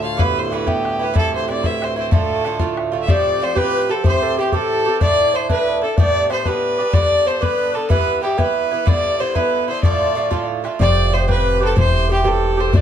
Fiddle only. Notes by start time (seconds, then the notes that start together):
0.03 F5
0.19 B4
0.39 C5
0.53 B4
0.68 G4
1.03 B4
1.17 A4
1.35 C5
1.50 D5
1.66 E5
1.84 C5
1.98 C5
2.13 A4
3.02 E5
3.10 D5
3.43 C5
3.57 B4
3.91 A4
4.07 C5
4.39 G4
4.53 A4
5.02 D5
5.36 C5
5.51 B4
5.83 A4
5.98 D5
6.32 C5
6.46 B4
6.94 D5
7.27 C5
7.42 B4
7.75 A4
7.90 B4
8.23 G4
8.38 B4
8.88 D5
9.20 C5
9.36 B4
9.68 C5
9.83 D5
10.81 D5
11.13 C5
11.30 B4
11.64 A4
11.79 C5
12.13 G4
12.28 A4
12.60 C5
12.77 D5